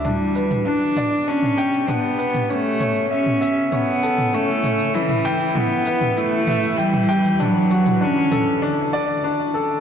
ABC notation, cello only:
X:1
M:4/4
L:1/8
Q:1/4=98
K:Glyd
V:1 name="Cello"
G,2 D2 C2 B,2 | A,2 C2 B,2 A,2 | E,2 B,2 A,2 G,2 | F,2 C2 z4 |]